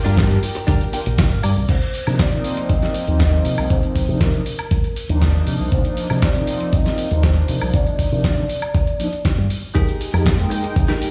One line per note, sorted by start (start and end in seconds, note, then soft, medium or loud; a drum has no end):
0.00 1.65 G4 medium
0.00 1.40 A#4 medium
0.00 1.65 D5 medium
0.00 1.67 G5 medium
0.00 1.65 A#5 medium
0.04 0.37 G2 medium
0.04 0.27 A#3 medium
0.04 0.24 D4 medium
0.04 0.27 D4 medium
0.04 0.24 F4 medium
0.04 0.28 F4 medium
0.04 0.24 G4 medium
0.04 0.28 G4 medium
0.04 0.24 A#4 loud
0.04 cabasa soft
0.17 kick loud
0.17 snare loud
0.17 closed hi-hat medium
0.17 cabasa soft
0.30 0.38 A#3 medium
0.30 0.38 D4 medium
0.30 0.38 F4 medium
0.30 0.38 G4 medium
0.30 closed hi-hat soft
0.30 cabasa soft
0.42 muted clean electric guitar stroke soft
0.42 open hi-hat medium
0.42 cabasa medium
0.55 muted clean electric guitar stroke medium
0.55 closed hi-hat medium
0.55 cabasa soft
0.67 0.77 G1 loud
0.67 0.81 D4 medium
0.67 0.81 F4 medium
0.67 0.81 G4 medium
0.67 0.81 A#4 medium
0.67 kick loud
0.67 closed hi-hat medium
0.67 cabasa soft
0.81 closed hi-hat soft
0.81 cabasa soft
0.93 1.01 A#3 medium
0.93 1.01 D4 medium
0.93 1.01 F4 medium
0.93 1.02 A#4 medium
0.93 1.17 G5 medium
0.93 muted clean electric guitar stroke soft
0.93 open hi-hat loud
0.93 cabasa medium
1.06 1.31 A#1 loud
1.06 closed hi-hat medium
1.06 cabasa soft
1.18 1.42 F5 medium
1.18 kick loud
1.18 snare loud
1.18 closed hi-hat medium
1.18 cabasa soft
1.32 1.40 G1 medium
1.32 cabasa soft
1.43 1.52 G2 loud
1.43 1.67 D5 medium
1.43 open hi-hat medium
1.43 cabasa medium
1.43 high woodblock medium
1.56 1.65 C2 medium
1.56 muted clean electric guitar stroke soft
1.56 cabasa soft
1.68 1.78 C2 medium
1.68 2.21 C5 medium
1.68 kick loud
1.68 closed hi-hat medium
1.68 crash medium
1.82 closed hi-hat soft
1.94 open hi-hat loud
2.07 2.38 C3 medium
2.07 2.29 F3 medium
2.07 2.29 A#3 medium
2.07 2.29 D4 medium
2.07 2.29 D#4 medium
2.07 high woodblock medium
2.19 2.71 D5 loud
2.19 kick loud
2.19 snare loud
2.19 closed hi-hat medium
2.31 3.04 F3 medium
2.31 3.04 A#3 medium
2.31 3.05 C4 medium
2.31 3.05 D#4 loud
2.31 closed hi-hat soft
2.44 open hi-hat medium
2.57 closed hi-hat medium
2.69 2.78 C2 medium
2.69 3.16 D#5 loud
2.69 kick loud
2.69 closed hi-hat medium
2.82 snare soft
2.82 closed hi-hat soft
2.94 open hi-hat loud
3.07 3.39 D#2 loud
3.07 4.05 F3 medium
3.07 4.05 A#3 medium
3.07 4.06 C4 medium
3.07 4.06 D#4 medium
3.07 closed hi-hat medium
3.20 kick loud
3.20 snare loud
3.20 closed hi-hat medium
3.45 3.54 C3 medium
3.45 open hi-hat medium
3.58 3.67 C2 medium
3.58 high woodblock medium
3.70 3.79 C2 medium
3.70 4.22 C5 medium
3.70 kick loud
3.70 closed hi-hat medium
3.83 closed hi-hat soft
3.95 kick medium
3.95 open hi-hat loud
4.08 4.40 C3 medium
4.08 4.31 F3 medium
4.08 4.31 A#3 medium
4.08 4.31 D4 medium
4.08 4.31 D#4 medium
4.21 5.18 A#4 medium
4.21 kick loud
4.21 snare loud
4.21 closed hi-hat medium
4.34 4.42 F3 medium
4.34 4.42 A#3 medium
4.34 4.42 D4 medium
4.34 4.42 D#4 medium
4.34 closed hi-hat soft
4.46 open hi-hat medium
4.59 closed hi-hat medium
4.59 high woodblock medium
4.71 4.80 C2 medium
4.71 kick loud
4.71 closed hi-hat medium
4.84 closed hi-hat soft
4.96 open hi-hat loud
5.09 5.41 D#2 loud
5.09 6.07 F3 medium
5.09 6.07 A#3 medium
5.09 6.07 D4 medium
5.09 6.08 D#4 medium
5.09 closed hi-hat medium
5.22 kick loud
5.22 snare loud
5.22 closed hi-hat medium
5.47 5.56 C3 medium
5.47 open hi-hat medium
5.60 5.68 C2 medium
5.72 5.81 C2 medium
5.72 6.24 C5 medium
5.72 kick loud
5.72 closed hi-hat medium
5.85 closed hi-hat soft
5.97 open hi-hat loud
6.09 6.42 C3 medium
6.09 6.32 F3 medium
6.09 6.32 A#3 medium
6.09 6.32 D4 medium
6.09 6.32 D#4 medium
6.09 high woodblock medium
6.22 6.75 D5 loud
6.22 kick loud
6.22 snare loud
6.22 closed hi-hat medium
6.34 7.07 F3 medium
6.34 7.08 A#3 medium
6.34 7.08 C4 medium
6.34 7.08 D#4 loud
6.34 closed hi-hat soft
6.47 open hi-hat medium
6.60 closed hi-hat medium
6.73 6.82 C2 medium
6.73 7.25 D#5 loud
6.73 kick loud
6.73 closed hi-hat medium
6.86 snare soft
6.86 closed hi-hat soft
6.98 open hi-hat loud
7.10 7.42 D#2 medium
7.10 8.08 F3 medium
7.10 8.09 A#3 medium
7.10 8.09 D4 medium
7.10 8.09 D#4 medium
7.10 closed hi-hat medium
7.23 7.70 C5 medium
7.23 kick loud
7.23 snare loud
7.23 closed hi-hat medium
7.48 7.57 C3 medium
7.48 open hi-hat medium
7.61 7.70 C2 medium
7.61 high woodblock medium
7.73 7.83 C2 medium
7.73 8.23 D5 loud
7.73 kick loud
7.73 closed hi-hat medium
7.87 closed hi-hat soft
7.99 kick medium
7.99 open hi-hat loud
8.11 8.43 C3 medium
8.11 8.34 F3 medium
8.11 8.34 A#3 medium
8.11 8.34 D4 medium
8.11 8.34 D#4 medium
8.24 kick loud
8.24 snare loud
8.24 closed hi-hat medium
8.36 8.44 F3 medium
8.36 8.45 A#3 medium
8.36 8.45 D4 medium
8.36 8.45 D#4 medium
8.36 closed hi-hat soft
8.49 open hi-hat medium
8.62 closed hi-hat soft
8.62 high woodblock medium
8.75 kick loud
8.75 closed hi-hat medium
8.87 closed hi-hat soft
8.99 9.08 F3 medium
8.99 9.08 A#3 medium
8.99 9.08 D4 medium
8.99 9.08 D#4 medium
8.99 open hi-hat loud
9.13 closed hi-hat soft
9.25 kick loud
9.25 snare loud
9.25 closed hi-hat medium
9.38 9.46 G2 medium
9.50 open hi-hat medium
9.75 9.84 F1 medium
9.75 11.11 G#3 medium
9.75 10.13 D#4 loud
9.75 10.14 G4 loud
9.75 10.14 G#4 medium
9.75 10.14 A#4 loud
9.75 11.11 D#5 medium
9.75 11.11 G5 medium
9.75 11.11 A#5 medium
9.75 kick loud
9.75 closed hi-hat medium
9.89 closed hi-hat soft
10.01 open hi-hat loud
10.13 10.45 F2 medium
10.13 10.36 G#3 medium
10.13 10.36 A#3 medium
10.13 10.36 D#4 medium
10.13 10.36 G4 medium
10.13 high woodblock medium
10.26 kick loud
10.26 snare loud
10.26 closed hi-hat medium
10.38 11.11 G#3 medium
10.38 11.11 A#3 medium
10.38 11.11 D#4 medium
10.38 11.11 G5 loud
10.38 closed hi-hat soft
10.50 muted clean electric guitar stroke medium
10.50 open hi-hat medium
10.63 muted clean electric guitar stroke soft
10.63 closed hi-hat medium
10.76 10.85 F1 medium
10.76 kick loud
10.76 closed hi-hat medium
10.88 11.08 D#4 loud
10.88 11.08 G4 loud
10.88 11.08 G#4 medium
10.88 11.08 A#4 loud
10.88 snare soft
10.88 closed hi-hat soft
11.02 open hi-hat loud